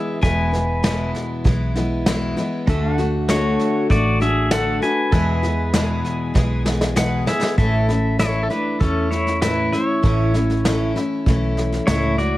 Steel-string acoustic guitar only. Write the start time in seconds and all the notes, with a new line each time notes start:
Already playing: E3 G#3 B3 E4
0.21 E2 B2 E3 G#3 B3 E4
0.52 E3 G#3 B3 E4
0.83 E2 B2 E3 G#3 B3 E4
1.44 E3 G#3 B3 E4
1.76 E3 G#3 B3 E4
2.06 E2 B2 E3 G#3 B3 E4
2.37 E3 G#3 B3 E4
2.67 D3 A3 D4 F#4
2.98 A3 D4 F#4
3.29 D3 A3 D4 F#4
3.90 D3 A3 D4 F#4
4.20 A3 D4 F#4
4.51 D3 A3 D4 F#4
4.82 A3 D4 F#4
5.12 E2 B2 E3 G#3 B3 G#4
5.43 E3 G#3 B3 G#4
5.73 E2 B2 E3 G#3 B3 G#4
6.34 E3 G#3 B3 G#4
6.65 E3 G#3 B3 G#4
6.96 E2 B2 E3 G#3 B3 G#4
7.26 E3 G#3 B3 G#4
7.58 A2 E3 A3 C#4 E4
7.88 A3 C#4 E4
8.19 A2 E3 A3 C#4 E4
8.49 A3 E4
8.80 E3 A3 C#4 E4
9.42 A2 E3 A3 C#4 E4
9.72 A3 C#4 E4
10.03 A2 E3 A3 C#4 E4
10.34 A3 C#4 E4
10.65 A2 E3 A3 C#4 E4
10.95 A3 C#4 E4
11.26 E3 A3 C#4 E4
11.87 A2 E3 A3 C#4 E4
12.18 A3 E4